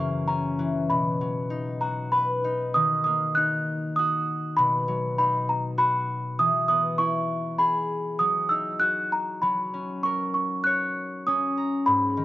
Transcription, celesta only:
0.00 0.29 C#6 medium
0.28 0.85 A#5 medium
0.90 2.08 B5 medium
1.81 2.13 A#5 medium
2.12 2.77 B5 medium
2.74 3.03 D#6 medium
3.04 3.33 D#6 medium
3.35 3.98 F#6 medium
3.96 4.59 D#6 medium
4.57 5.17 B5 medium
5.18 5.47 B5 medium
5.49 5.63 A#5 medium
5.78 6.35 B5 medium
6.39 6.67 D#6 medium
6.68 6.82 D#6 medium
6.98 7.61 C#6 medium
7.59 8.16 B5 medium
8.19 8.51 D#6 medium
8.49 8.81 E6 medium
8.80 9.12 F#6 medium
9.12 9.44 A#5 medium
9.42 10.06 B5 medium
10.03 10.33 C#6 medium
10.34 10.63 C#6 medium
10.64 11.21 F#6 medium
11.27 11.89 D#6 medium
11.86 12.25 B5 medium

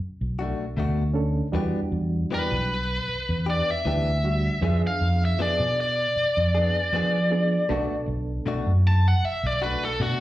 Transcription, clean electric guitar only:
0.39 0.65 A3 medium
0.39 0.64 D4 medium
0.39 0.64 F#4 medium
0.77 1.02 B2 medium
0.77 1.02 A3 medium
0.77 1.03 D4 medium
0.77 1.03 F#4 medium
1.54 1.79 E3 medium
1.54 1.79 B3 medium
1.54 1.80 D4 medium
1.54 1.80 G4 medium
2.31 2.56 E3 medium
2.31 2.56 B3 medium
2.31 2.57 D4 medium
2.31 2.57 G4 medium
3.46 3.73 B3 soft
3.46 3.72 D4 soft
3.46 3.71 G4 medium
3.85 4.10 E3 medium
3.85 4.10 B3 medium
3.85 4.11 D4 medium
3.85 4.11 G4 medium
4.62 4.87 F3 medium
4.62 4.87 B3 medium
4.62 4.88 D4 medium
4.62 4.88 G#4 medium
5.39 5.64 F3 medium
5.39 5.64 B3 medium
5.39 5.64 D4 medium
5.39 5.65 G#4 medium
6.55 6.81 B3 soft
6.55 6.80 D4 soft
6.55 6.79 G#4 medium
6.93 7.17 F3 medium
6.93 7.18 B3 medium
6.93 7.18 D4 loud
6.93 7.19 G#4 loud
7.69 7.94 B2 medium
7.69 7.94 A3 medium
7.69 7.95 D4 medium
7.69 7.95 F#4 loud
8.46 8.71 B2 medium
8.46 8.71 A3 loud
8.46 8.71 D4 medium
8.46 8.72 F#4 loud
9.62 9.88 A3 soft
9.62 9.87 D4 soft
9.62 9.86 F#4 medium
10.00 10.20 B2 medium
10.00 10.20 A3 medium
10.00 10.20 D4 medium
10.00 10.20 F#4 medium

